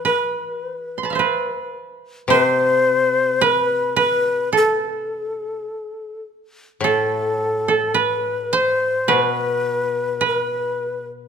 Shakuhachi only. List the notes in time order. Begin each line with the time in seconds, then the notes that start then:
0.06 B4
0.66 C5
0.79 B4
0.99 C5
1.12 B4
2.31 C5
3.43 B4
3.98 B4
4.57 A4
6.83 A4
7.97 B4
8.55 C5
9.12 B4
10.26 B4